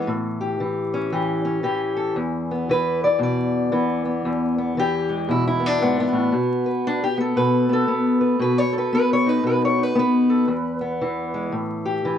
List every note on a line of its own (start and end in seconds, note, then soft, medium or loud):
0.00 0.60 E3 medium
0.00 0.10 D5 medium
0.07 2.13 A2 medium
0.41 1.12 G4 medium
0.60 1.12 E3 medium
0.94 1.44 C#4 medium
1.12 1.63 E3 medium
1.12 1.63 G4 medium
1.45 2.14 C#4 medium
1.63 2.69 E3 medium
1.63 2.14 G4 medium
1.97 2.14 A4 medium
2.16 4.24 E2 medium
2.51 3.72 B3 soft
2.69 3.71 E3 medium
2.69 3.02 B4 medium
3.04 3.22 D5 medium
3.19 3.71 B2 medium
3.23 4.78 D5 medium
3.72 4.76 E3 medium
3.72 4.05 B3 medium
4.05 4.58 B3 soft
4.25 5.81 E2 medium
4.58 4.79 B3 soft
4.77 6.33 E3 medium
4.77 5.30 G4 loud
5.09 5.66 G#3 soft
5.29 6.31 B2 medium
5.29 5.46 E4 medium
5.48 6.16 E4 medium
5.60 5.82 B3 soft
5.66 6.34 D4 medium
5.82 6.12 G#2 medium
5.82 5.99 B3 medium
6.00 7.03 B3 medium
6.13 6.32 A2 medium
6.32 7.36 B2 medium
6.66 7.37 B4 soft
6.87 7.03 D4 medium
7.04 7.20 G4 medium
7.18 7.69 B3 soft
7.18 7.72 A4 medium
7.36 8.38 B2 medium
7.36 8.20 B4 medium
7.69 7.87 B3 soft
7.69 8.52 A4 medium
7.88 8.61 B3 medium
8.21 8.41 B4 soft
8.39 9.42 B2 medium
8.39 8.58 B4 medium
8.58 8.75 C#5 medium
8.73 10.28 A4 soft
8.78 8.93 B4 medium
8.93 9.94 B3 medium
8.93 9.11 B4 loud
9.13 9.29 C#5 loud
9.26 9.77 D#4 medium
9.26 9.45 B4 medium
9.43 10.48 B2 medium
9.43 9.63 B4 medium
9.65 9.83 C#5 medium
9.78 10.47 D#4 soft
9.83 9.98 B4 medium
9.95 10.45 B3 medium
9.95 11.54 B4 loud
10.30 10.46 A4 soft
10.48 11.52 E2 medium
10.81 11.52 B3 soft
11.01 12.04 E3 medium
11.34 11.53 G#3 soft
11.52 12.18 A2 medium
11.86 12.18 G4 medium
12.05 12.18 E3 medium